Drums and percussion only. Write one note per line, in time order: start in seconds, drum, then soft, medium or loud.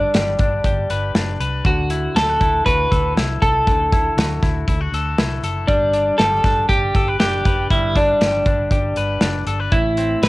0.14 snare loud
0.14 closed hi-hat medium
0.39 kick medium
0.39 closed hi-hat medium
0.64 kick medium
0.64 closed hi-hat medium
0.90 closed hi-hat medium
1.15 snare loud
1.15 closed hi-hat medium
1.40 closed hi-hat medium
1.65 kick medium
1.65 closed hi-hat medium
1.90 closed hi-hat medium
2.16 snare loud
2.16 closed hi-hat medium
2.41 kick medium
2.41 closed hi-hat medium
2.66 kick medium
2.66 closed hi-hat medium
2.92 kick medium
2.92 closed hi-hat medium
3.17 snare medium
3.17 closed hi-hat medium
3.42 kick medium
3.42 closed hi-hat medium
3.67 kick medium
3.67 closed hi-hat medium
3.92 kick medium
3.92 closed hi-hat medium
4.18 snare loud
4.18 closed hi-hat medium
4.43 kick medium
4.43 snare soft
4.43 closed hi-hat medium
4.68 kick medium
4.68 closed hi-hat medium
4.94 closed hi-hat medium
5.18 snare loud
5.18 closed hi-hat medium
5.44 closed hi-hat medium
5.68 kick medium
5.68 closed hi-hat medium
5.93 closed hi-hat medium
6.19 snare medium
6.19 closed hi-hat medium
6.44 kick medium
6.44 snare soft
6.44 closed hi-hat medium
6.69 kick medium
6.69 closed hi-hat medium
6.95 kick medium
6.95 closed hi-hat medium
7.20 snare loud
7.20 closed hi-hat medium
7.46 kick medium
7.46 closed hi-hat medium
7.71 kick medium
7.71 closed hi-hat medium
7.96 kick medium
7.96 closed hi-hat medium
8.21 snare medium
8.21 closed hi-hat medium
8.46 kick medium
8.46 closed hi-hat medium
8.71 kick medium
8.71 closed hi-hat medium
8.96 closed hi-hat medium
9.21 snare medium
9.21 closed hi-hat medium
9.47 closed hi-hat medium
9.72 kick medium
9.72 closed hi-hat medium
9.97 closed hi-hat medium
10.23 snare loud
10.23 closed hi-hat medium